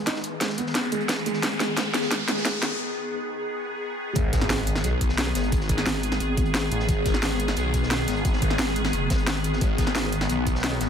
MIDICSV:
0, 0, Header, 1, 8, 480
1, 0, Start_track
1, 0, Key_signature, 5, "minor"
1, 0, Tempo, 340909
1, 96, Time_signature, 4, 2, 24, 8
1, 15337, End_track
2, 0, Start_track
2, 0, Title_t, "Synth drone"
2, 0, Program_c, 0, 95
2, 0, Note_on_c, 0, 51, 86
2, 0, Note_on_c, 0, 59, 76
2, 0, Note_on_c, 0, 68, 92
2, 5799, Note_off_c, 0, 59, 0
2, 5800, Note_off_c, 0, 51, 0
2, 5800, Note_off_c, 0, 68, 0
2, 5855, Note_on_c, 0, 51, 85
2, 5855, Note_on_c, 0, 59, 82
2, 5855, Note_on_c, 0, 68, 94
2, 13503, Note_off_c, 0, 68, 0
2, 13536, Note_on_c, 0, 66, 94
2, 15337, Note_off_c, 0, 51, 0
2, 15337, Note_off_c, 0, 59, 0
2, 15337, Note_off_c, 0, 66, 0
2, 15337, End_track
3, 0, Start_track
3, 0, Title_t, "Felt piano"
3, 0, Program_c, 1, 0
3, 95, Note_on_c, 1, 63, 83
3, 242, Note_off_c, 1, 63, 0
3, 574, Note_on_c, 1, 56, 76
3, 721, Note_off_c, 1, 56, 0
3, 816, Note_on_c, 1, 59, 75
3, 874, Note_off_c, 1, 59, 0
3, 1056, Note_on_c, 1, 59, 82
3, 1153, Note_off_c, 1, 59, 0
3, 1296, Note_on_c, 1, 56, 78
3, 1393, Note_off_c, 1, 56, 0
3, 1774, Note_on_c, 1, 56, 74
3, 1921, Note_off_c, 1, 56, 0
3, 2015, Note_on_c, 1, 56, 79
3, 2113, Note_off_c, 1, 56, 0
3, 2255, Note_on_c, 1, 56, 70
3, 2402, Note_off_c, 1, 56, 0
3, 2495, Note_on_c, 1, 56, 94
3, 2593, Note_off_c, 1, 56, 0
3, 2976, Note_on_c, 1, 56, 80
3, 3073, Note_off_c, 1, 56, 0
3, 3216, Note_on_c, 1, 56, 74
3, 3362, Note_off_c, 1, 56, 0
3, 3456, Note_on_c, 1, 56, 95
3, 3553, Note_off_c, 1, 56, 0
3, 15337, End_track
4, 0, Start_track
4, 0, Title_t, "Detuned saw bass"
4, 0, Program_c, 2, 39
4, 5856, Note_on_c, 2, 32, 96
4, 6077, Note_off_c, 2, 32, 0
4, 6096, Note_on_c, 2, 32, 99
4, 6797, Note_off_c, 2, 32, 0
4, 6816, Note_on_c, 2, 35, 99
4, 7516, Note_off_c, 2, 35, 0
4, 7536, Note_on_c, 2, 32, 97
4, 8237, Note_off_c, 2, 32, 0
4, 9456, Note_on_c, 2, 33, 100
4, 9677, Note_off_c, 2, 33, 0
4, 9696, Note_on_c, 2, 32, 101
4, 9917, Note_off_c, 2, 32, 0
4, 9936, Note_on_c, 2, 32, 97
4, 10637, Note_off_c, 2, 32, 0
4, 10656, Note_on_c, 2, 35, 97
4, 11357, Note_off_c, 2, 35, 0
4, 11376, Note_on_c, 2, 32, 96
4, 12077, Note_off_c, 2, 32, 0
4, 13536, Note_on_c, 2, 32, 100
4, 13757, Note_off_c, 2, 32, 0
4, 13776, Note_on_c, 2, 32, 97
4, 14477, Note_off_c, 2, 32, 0
4, 14496, Note_on_c, 2, 35, 96
4, 15197, Note_off_c, 2, 35, 0
4, 15216, Note_on_c, 2, 32, 95
4, 15337, Note_off_c, 2, 32, 0
4, 15337, End_track
5, 0, Start_track
5, 0, Title_t, "Wobble bass"
5, 0, Program_c, 3, 39
5, 8255, Note_on_c, 3, 32, 100
5, 8716, Note_off_c, 3, 32, 0
5, 8736, Note_on_c, 3, 32, 93
5, 9437, Note_off_c, 3, 32, 0
5, 12094, Note_on_c, 3, 32, 98
5, 12556, Note_off_c, 3, 32, 0
5, 12574, Note_on_c, 3, 30, 94
5, 12796, Note_off_c, 3, 30, 0
5, 12815, Note_on_c, 3, 32, 95
5, 13516, Note_off_c, 3, 32, 0
5, 15337, End_track
6, 0, Start_track
6, 0, Title_t, "Impact"
6, 0, Program_c, 4, 103
6, 5856, Note_on_c, 4, 60, 76
6, 7776, Note_off_c, 4, 60, 0
6, 15337, End_track
7, 0, Start_track
7, 0, Title_t, "Riser"
7, 0, Program_c, 5, 103
7, 0, Note_on_c, 5, 60, 80
7, 3936, Note_off_c, 5, 60, 0
7, 15337, End_track
8, 0, Start_track
8, 0, Title_t, "Drums"
8, 96, Note_on_c, 9, 36, 96
8, 96, Note_on_c, 9, 38, 60
8, 96, Note_on_c, 9, 42, 81
8, 219, Note_off_c, 9, 38, 0
8, 219, Note_on_c, 9, 38, 42
8, 236, Note_off_c, 9, 36, 0
8, 237, Note_off_c, 9, 42, 0
8, 331, Note_on_c, 9, 42, 63
8, 336, Note_off_c, 9, 42, 0
8, 336, Note_on_c, 9, 42, 67
8, 360, Note_off_c, 9, 38, 0
8, 477, Note_off_c, 9, 42, 0
8, 567, Note_on_c, 9, 42, 81
8, 575, Note_off_c, 9, 42, 0
8, 575, Note_on_c, 9, 36, 97
8, 575, Note_on_c, 9, 38, 61
8, 575, Note_on_c, 9, 42, 92
8, 698, Note_off_c, 9, 38, 0
8, 698, Note_on_c, 9, 38, 51
8, 716, Note_off_c, 9, 36, 0
8, 716, Note_off_c, 9, 42, 0
8, 812, Note_on_c, 9, 42, 66
8, 816, Note_off_c, 9, 42, 0
8, 816, Note_on_c, 9, 42, 64
8, 839, Note_off_c, 9, 38, 0
8, 939, Note_on_c, 9, 38, 42
8, 956, Note_off_c, 9, 42, 0
8, 1055, Note_off_c, 9, 38, 0
8, 1055, Note_on_c, 9, 36, 100
8, 1055, Note_on_c, 9, 38, 67
8, 1055, Note_on_c, 9, 42, 92
8, 1056, Note_off_c, 9, 42, 0
8, 1056, Note_on_c, 9, 42, 87
8, 1196, Note_off_c, 9, 36, 0
8, 1196, Note_off_c, 9, 38, 0
8, 1197, Note_off_c, 9, 42, 0
8, 1295, Note_on_c, 9, 42, 66
8, 1296, Note_off_c, 9, 42, 0
8, 1296, Note_on_c, 9, 42, 65
8, 1415, Note_off_c, 9, 42, 0
8, 1415, Note_on_c, 9, 42, 41
8, 1534, Note_off_c, 9, 42, 0
8, 1534, Note_on_c, 9, 42, 88
8, 1535, Note_off_c, 9, 42, 0
8, 1535, Note_on_c, 9, 36, 99
8, 1535, Note_on_c, 9, 38, 70
8, 1535, Note_on_c, 9, 42, 94
8, 1538, Note_off_c, 9, 38, 0
8, 1538, Note_on_c, 9, 38, 118
8, 1676, Note_off_c, 9, 36, 0
8, 1676, Note_off_c, 9, 42, 0
8, 1679, Note_off_c, 9, 38, 0
8, 1775, Note_on_c, 9, 42, 66
8, 1787, Note_off_c, 9, 42, 0
8, 1787, Note_on_c, 9, 42, 68
8, 1880, Note_on_c, 9, 38, 40
8, 1928, Note_off_c, 9, 42, 0
8, 2015, Note_off_c, 9, 38, 0
8, 2015, Note_on_c, 9, 36, 98
8, 2015, Note_on_c, 9, 38, 77
8, 2015, Note_on_c, 9, 42, 94
8, 2017, Note_off_c, 9, 42, 0
8, 2017, Note_on_c, 9, 42, 96
8, 2156, Note_off_c, 9, 36, 0
8, 2156, Note_off_c, 9, 38, 0
8, 2158, Note_off_c, 9, 42, 0
8, 2255, Note_on_c, 9, 38, 47
8, 2255, Note_on_c, 9, 42, 65
8, 2257, Note_off_c, 9, 42, 0
8, 2257, Note_on_c, 9, 42, 72
8, 2396, Note_off_c, 9, 38, 0
8, 2398, Note_off_c, 9, 42, 0
8, 2484, Note_on_c, 9, 42, 86
8, 2495, Note_on_c, 9, 36, 101
8, 2496, Note_off_c, 9, 42, 0
8, 2496, Note_on_c, 9, 38, 78
8, 2496, Note_on_c, 9, 42, 90
8, 2497, Note_off_c, 9, 38, 0
8, 2497, Note_on_c, 9, 38, 122
8, 2636, Note_off_c, 9, 36, 0
8, 2636, Note_off_c, 9, 42, 0
8, 2638, Note_off_c, 9, 38, 0
8, 2735, Note_on_c, 9, 38, 80
8, 2735, Note_on_c, 9, 42, 66
8, 2736, Note_off_c, 9, 42, 0
8, 2736, Note_on_c, 9, 42, 73
8, 2838, Note_off_c, 9, 38, 0
8, 2838, Note_on_c, 9, 38, 56
8, 2877, Note_off_c, 9, 42, 0
8, 2973, Note_on_c, 9, 42, 86
8, 2975, Note_on_c, 9, 36, 99
8, 2976, Note_off_c, 9, 38, 0
8, 2976, Note_off_c, 9, 42, 0
8, 2976, Note_on_c, 9, 38, 82
8, 2976, Note_on_c, 9, 42, 91
8, 3116, Note_off_c, 9, 36, 0
8, 3116, Note_off_c, 9, 38, 0
8, 3116, Note_off_c, 9, 42, 0
8, 3215, Note_on_c, 9, 38, 85
8, 3215, Note_on_c, 9, 42, 63
8, 3217, Note_off_c, 9, 42, 0
8, 3217, Note_on_c, 9, 42, 66
8, 3337, Note_off_c, 9, 38, 0
8, 3337, Note_on_c, 9, 38, 49
8, 3358, Note_off_c, 9, 42, 0
8, 3451, Note_off_c, 9, 38, 0
8, 3451, Note_on_c, 9, 38, 119
8, 3455, Note_off_c, 9, 38, 0
8, 3455, Note_on_c, 9, 38, 88
8, 3455, Note_on_c, 9, 42, 90
8, 3456, Note_on_c, 9, 36, 102
8, 3465, Note_on_c, 9, 46, 82
8, 3570, Note_off_c, 9, 42, 0
8, 3570, Note_on_c, 9, 42, 45
8, 3595, Note_off_c, 9, 38, 0
8, 3596, Note_off_c, 9, 36, 0
8, 3606, Note_off_c, 9, 46, 0
8, 3689, Note_off_c, 9, 42, 0
8, 3689, Note_on_c, 9, 42, 70
8, 3695, Note_off_c, 9, 42, 0
8, 3695, Note_on_c, 9, 38, 92
8, 3695, Note_on_c, 9, 42, 66
8, 3829, Note_off_c, 9, 42, 0
8, 3829, Note_on_c, 9, 42, 42
8, 3836, Note_off_c, 9, 38, 0
8, 3970, Note_off_c, 9, 42, 0
8, 5847, Note_on_c, 9, 42, 93
8, 5856, Note_off_c, 9, 42, 0
8, 5856, Note_on_c, 9, 36, 121
8, 5856, Note_on_c, 9, 42, 85
8, 5997, Note_off_c, 9, 36, 0
8, 5997, Note_off_c, 9, 42, 0
8, 6093, Note_on_c, 9, 38, 46
8, 6096, Note_on_c, 9, 36, 108
8, 6096, Note_on_c, 9, 42, 96
8, 6098, Note_off_c, 9, 42, 0
8, 6098, Note_on_c, 9, 42, 67
8, 6215, Note_on_c, 9, 40, 57
8, 6234, Note_off_c, 9, 38, 0
8, 6237, Note_off_c, 9, 36, 0
8, 6239, Note_off_c, 9, 42, 0
8, 6330, Note_on_c, 9, 38, 114
8, 6336, Note_off_c, 9, 38, 0
8, 6336, Note_on_c, 9, 38, 117
8, 6336, Note_on_c, 9, 42, 80
8, 6345, Note_off_c, 9, 42, 0
8, 6345, Note_on_c, 9, 42, 87
8, 6356, Note_off_c, 9, 40, 0
8, 6477, Note_off_c, 9, 38, 0
8, 6485, Note_off_c, 9, 42, 0
8, 6575, Note_on_c, 9, 42, 96
8, 6577, Note_off_c, 9, 42, 0
8, 6577, Note_on_c, 9, 42, 76
8, 6695, Note_on_c, 9, 40, 50
8, 6697, Note_on_c, 9, 38, 52
8, 6718, Note_off_c, 9, 42, 0
8, 6813, Note_on_c, 9, 42, 85
8, 6815, Note_off_c, 9, 42, 0
8, 6815, Note_on_c, 9, 42, 84
8, 6836, Note_off_c, 9, 40, 0
8, 6838, Note_off_c, 9, 38, 0
8, 6956, Note_off_c, 9, 42, 0
8, 7055, Note_on_c, 9, 42, 96
8, 7056, Note_on_c, 9, 36, 63
8, 7059, Note_off_c, 9, 42, 0
8, 7059, Note_on_c, 9, 42, 66
8, 7169, Note_on_c, 9, 38, 47
8, 7197, Note_off_c, 9, 36, 0
8, 7200, Note_off_c, 9, 42, 0
8, 7294, Note_off_c, 9, 38, 0
8, 7294, Note_on_c, 9, 38, 108
8, 7296, Note_off_c, 9, 38, 0
8, 7296, Note_on_c, 9, 38, 121
8, 7296, Note_on_c, 9, 42, 86
8, 7303, Note_on_c, 9, 46, 81
8, 7409, Note_off_c, 9, 42, 0
8, 7409, Note_on_c, 9, 42, 47
8, 7437, Note_off_c, 9, 38, 0
8, 7444, Note_off_c, 9, 46, 0
8, 7536, Note_off_c, 9, 42, 0
8, 7536, Note_on_c, 9, 38, 59
8, 7536, Note_on_c, 9, 42, 103
8, 7539, Note_off_c, 9, 42, 0
8, 7539, Note_on_c, 9, 42, 70
8, 7651, Note_off_c, 9, 42, 0
8, 7651, Note_on_c, 9, 42, 47
8, 7677, Note_off_c, 9, 38, 0
8, 7776, Note_off_c, 9, 42, 0
8, 7776, Note_on_c, 9, 36, 126
8, 7776, Note_on_c, 9, 42, 87
8, 7785, Note_off_c, 9, 42, 0
8, 7785, Note_on_c, 9, 42, 96
8, 7894, Note_on_c, 9, 38, 45
8, 7916, Note_off_c, 9, 36, 0
8, 7925, Note_off_c, 9, 42, 0
8, 8015, Note_on_c, 9, 42, 70
8, 8016, Note_off_c, 9, 42, 0
8, 8016, Note_on_c, 9, 36, 111
8, 8016, Note_on_c, 9, 42, 97
8, 8035, Note_off_c, 9, 38, 0
8, 8136, Note_on_c, 9, 40, 59
8, 8157, Note_off_c, 9, 36, 0
8, 8157, Note_off_c, 9, 42, 0
8, 8255, Note_on_c, 9, 38, 116
8, 8256, Note_off_c, 9, 38, 0
8, 8256, Note_on_c, 9, 38, 126
8, 8256, Note_on_c, 9, 42, 78
8, 8257, Note_off_c, 9, 42, 0
8, 8257, Note_on_c, 9, 42, 93
8, 8277, Note_off_c, 9, 40, 0
8, 8382, Note_off_c, 9, 38, 0
8, 8382, Note_on_c, 9, 38, 53
8, 8398, Note_off_c, 9, 42, 0
8, 8493, Note_on_c, 9, 42, 74
8, 8495, Note_off_c, 9, 42, 0
8, 8495, Note_on_c, 9, 42, 94
8, 8523, Note_off_c, 9, 38, 0
8, 8615, Note_on_c, 9, 40, 52
8, 8619, Note_on_c, 9, 38, 43
8, 8636, Note_off_c, 9, 42, 0
8, 8735, Note_on_c, 9, 42, 82
8, 8737, Note_off_c, 9, 42, 0
8, 8737, Note_on_c, 9, 42, 85
8, 8756, Note_off_c, 9, 40, 0
8, 8760, Note_off_c, 9, 38, 0
8, 8877, Note_off_c, 9, 42, 0
8, 8974, Note_on_c, 9, 42, 72
8, 8975, Note_off_c, 9, 42, 0
8, 8975, Note_on_c, 9, 42, 95
8, 8976, Note_on_c, 9, 36, 111
8, 9090, Note_off_c, 9, 42, 0
8, 9090, Note_on_c, 9, 42, 44
8, 9117, Note_off_c, 9, 36, 0
8, 9207, Note_on_c, 9, 38, 122
8, 9215, Note_off_c, 9, 42, 0
8, 9215, Note_on_c, 9, 42, 87
8, 9216, Note_off_c, 9, 38, 0
8, 9216, Note_off_c, 9, 42, 0
8, 9216, Note_on_c, 9, 38, 125
8, 9216, Note_on_c, 9, 42, 82
8, 9357, Note_off_c, 9, 38, 0
8, 9357, Note_off_c, 9, 42, 0
8, 9451, Note_on_c, 9, 42, 70
8, 9456, Note_off_c, 9, 42, 0
8, 9456, Note_on_c, 9, 42, 97
8, 9569, Note_on_c, 9, 38, 47
8, 9597, Note_off_c, 9, 42, 0
8, 9695, Note_on_c, 9, 36, 125
8, 9695, Note_on_c, 9, 42, 81
8, 9698, Note_off_c, 9, 42, 0
8, 9698, Note_on_c, 9, 42, 84
8, 9710, Note_off_c, 9, 38, 0
8, 9836, Note_off_c, 9, 36, 0
8, 9839, Note_off_c, 9, 42, 0
8, 9935, Note_on_c, 9, 36, 109
8, 9935, Note_on_c, 9, 38, 41
8, 9936, Note_on_c, 9, 42, 92
8, 9947, Note_off_c, 9, 42, 0
8, 9947, Note_on_c, 9, 42, 64
8, 10056, Note_on_c, 9, 40, 57
8, 10076, Note_off_c, 9, 36, 0
8, 10076, Note_off_c, 9, 38, 0
8, 10088, Note_off_c, 9, 42, 0
8, 10170, Note_on_c, 9, 42, 93
8, 10175, Note_off_c, 9, 42, 0
8, 10175, Note_on_c, 9, 38, 124
8, 10175, Note_on_c, 9, 42, 78
8, 10179, Note_off_c, 9, 38, 0
8, 10179, Note_on_c, 9, 38, 122
8, 10196, Note_off_c, 9, 40, 0
8, 10316, Note_off_c, 9, 42, 0
8, 10320, Note_off_c, 9, 38, 0
8, 10403, Note_on_c, 9, 42, 76
8, 10415, Note_off_c, 9, 42, 0
8, 10415, Note_on_c, 9, 42, 92
8, 10535, Note_on_c, 9, 40, 51
8, 10539, Note_on_c, 9, 38, 51
8, 10556, Note_off_c, 9, 42, 0
8, 10653, Note_on_c, 9, 42, 88
8, 10655, Note_off_c, 9, 42, 0
8, 10655, Note_on_c, 9, 42, 81
8, 10676, Note_off_c, 9, 40, 0
8, 10679, Note_off_c, 9, 38, 0
8, 10796, Note_off_c, 9, 42, 0
8, 10895, Note_on_c, 9, 36, 67
8, 10895, Note_on_c, 9, 42, 91
8, 10901, Note_off_c, 9, 42, 0
8, 10901, Note_on_c, 9, 42, 73
8, 11024, Note_on_c, 9, 38, 47
8, 11036, Note_off_c, 9, 36, 0
8, 11042, Note_off_c, 9, 42, 0
8, 11135, Note_off_c, 9, 38, 0
8, 11135, Note_on_c, 9, 38, 127
8, 11135, Note_on_c, 9, 42, 80
8, 11136, Note_off_c, 9, 38, 0
8, 11136, Note_on_c, 9, 38, 104
8, 11136, Note_on_c, 9, 46, 72
8, 11246, Note_off_c, 9, 42, 0
8, 11246, Note_on_c, 9, 42, 47
8, 11277, Note_off_c, 9, 38, 0
8, 11277, Note_off_c, 9, 46, 0
8, 11369, Note_off_c, 9, 42, 0
8, 11369, Note_on_c, 9, 42, 71
8, 11374, Note_off_c, 9, 42, 0
8, 11374, Note_on_c, 9, 42, 93
8, 11379, Note_on_c, 9, 38, 51
8, 11493, Note_off_c, 9, 42, 0
8, 11493, Note_on_c, 9, 42, 43
8, 11520, Note_off_c, 9, 38, 0
8, 11614, Note_off_c, 9, 42, 0
8, 11614, Note_on_c, 9, 42, 79
8, 11615, Note_on_c, 9, 36, 126
8, 11616, Note_off_c, 9, 42, 0
8, 11616, Note_on_c, 9, 42, 89
8, 11730, Note_on_c, 9, 38, 40
8, 11756, Note_off_c, 9, 36, 0
8, 11757, Note_off_c, 9, 42, 0
8, 11855, Note_on_c, 9, 36, 110
8, 11855, Note_on_c, 9, 42, 90
8, 11856, Note_off_c, 9, 42, 0
8, 11856, Note_on_c, 9, 42, 67
8, 11871, Note_off_c, 9, 38, 0
8, 11975, Note_on_c, 9, 40, 56
8, 11996, Note_off_c, 9, 36, 0
8, 11997, Note_off_c, 9, 42, 0
8, 12088, Note_on_c, 9, 38, 115
8, 12096, Note_off_c, 9, 38, 0
8, 12096, Note_on_c, 9, 38, 121
8, 12096, Note_on_c, 9, 42, 75
8, 12099, Note_off_c, 9, 42, 0
8, 12099, Note_on_c, 9, 42, 90
8, 12116, Note_off_c, 9, 40, 0
8, 12214, Note_off_c, 9, 38, 0
8, 12214, Note_on_c, 9, 38, 53
8, 12240, Note_off_c, 9, 42, 0
8, 12335, Note_on_c, 9, 42, 88
8, 12343, Note_off_c, 9, 42, 0
8, 12343, Note_on_c, 9, 42, 64
8, 12355, Note_off_c, 9, 38, 0
8, 12455, Note_on_c, 9, 40, 48
8, 12459, Note_on_c, 9, 38, 44
8, 12484, Note_off_c, 9, 42, 0
8, 12572, Note_on_c, 9, 42, 91
8, 12575, Note_off_c, 9, 42, 0
8, 12575, Note_on_c, 9, 42, 76
8, 12596, Note_off_c, 9, 40, 0
8, 12599, Note_off_c, 9, 38, 0
8, 12716, Note_off_c, 9, 42, 0
8, 12815, Note_on_c, 9, 36, 112
8, 12815, Note_on_c, 9, 42, 90
8, 12816, Note_on_c, 9, 38, 108
8, 12817, Note_off_c, 9, 42, 0
8, 12817, Note_on_c, 9, 42, 83
8, 12933, Note_off_c, 9, 42, 0
8, 12933, Note_on_c, 9, 42, 48
8, 12956, Note_off_c, 9, 36, 0
8, 12957, Note_off_c, 9, 38, 0
8, 13054, Note_off_c, 9, 42, 0
8, 13054, Note_on_c, 9, 42, 79
8, 13055, Note_off_c, 9, 42, 0
8, 13055, Note_on_c, 9, 38, 127
8, 13055, Note_on_c, 9, 42, 77
8, 13196, Note_off_c, 9, 38, 0
8, 13196, Note_off_c, 9, 42, 0
8, 13296, Note_on_c, 9, 42, 93
8, 13300, Note_off_c, 9, 42, 0
8, 13300, Note_on_c, 9, 42, 71
8, 13420, Note_on_c, 9, 38, 46
8, 13441, Note_off_c, 9, 42, 0
8, 13535, Note_on_c, 9, 42, 81
8, 13536, Note_on_c, 9, 36, 119
8, 13541, Note_off_c, 9, 42, 0
8, 13541, Note_on_c, 9, 42, 84
8, 13561, Note_off_c, 9, 38, 0
8, 13677, Note_off_c, 9, 36, 0
8, 13682, Note_off_c, 9, 42, 0
8, 13773, Note_on_c, 9, 38, 45
8, 13775, Note_on_c, 9, 42, 90
8, 13776, Note_on_c, 9, 36, 104
8, 13783, Note_off_c, 9, 42, 0
8, 13783, Note_on_c, 9, 42, 65
8, 13896, Note_on_c, 9, 40, 54
8, 13914, Note_off_c, 9, 38, 0
8, 13917, Note_off_c, 9, 36, 0
8, 13924, Note_off_c, 9, 42, 0
8, 14011, Note_on_c, 9, 42, 92
8, 14015, Note_off_c, 9, 42, 0
8, 14015, Note_on_c, 9, 38, 115
8, 14015, Note_on_c, 9, 42, 75
8, 14024, Note_off_c, 9, 38, 0
8, 14024, Note_on_c, 9, 38, 117
8, 14036, Note_off_c, 9, 40, 0
8, 14156, Note_off_c, 9, 42, 0
8, 14165, Note_off_c, 9, 38, 0
8, 14255, Note_on_c, 9, 42, 88
8, 14265, Note_off_c, 9, 42, 0
8, 14265, Note_on_c, 9, 42, 67
8, 14374, Note_on_c, 9, 38, 55
8, 14376, Note_on_c, 9, 40, 48
8, 14406, Note_off_c, 9, 42, 0
8, 14491, Note_on_c, 9, 42, 91
8, 14496, Note_off_c, 9, 42, 0
8, 14496, Note_on_c, 9, 42, 78
8, 14515, Note_off_c, 9, 38, 0
8, 14517, Note_off_c, 9, 40, 0
8, 14637, Note_off_c, 9, 42, 0
8, 14736, Note_on_c, 9, 36, 63
8, 14737, Note_on_c, 9, 42, 89
8, 14738, Note_off_c, 9, 42, 0
8, 14738, Note_on_c, 9, 42, 67
8, 14858, Note_on_c, 9, 38, 53
8, 14877, Note_off_c, 9, 36, 0
8, 14879, Note_off_c, 9, 42, 0
8, 14970, Note_off_c, 9, 38, 0
8, 14970, Note_on_c, 9, 38, 117
8, 14976, Note_on_c, 9, 46, 76
8, 14977, Note_off_c, 9, 38, 0
8, 14977, Note_on_c, 9, 38, 124
8, 14977, Note_on_c, 9, 42, 81
8, 15095, Note_off_c, 9, 42, 0
8, 15095, Note_on_c, 9, 42, 44
8, 15117, Note_off_c, 9, 38, 0
8, 15117, Note_off_c, 9, 46, 0
8, 15215, Note_on_c, 9, 38, 49
8, 15217, Note_off_c, 9, 42, 0
8, 15217, Note_on_c, 9, 42, 93
8, 15221, Note_off_c, 9, 42, 0
8, 15221, Note_on_c, 9, 42, 70
8, 15337, Note_off_c, 9, 38, 0
8, 15337, Note_off_c, 9, 42, 0
8, 15337, End_track
0, 0, End_of_file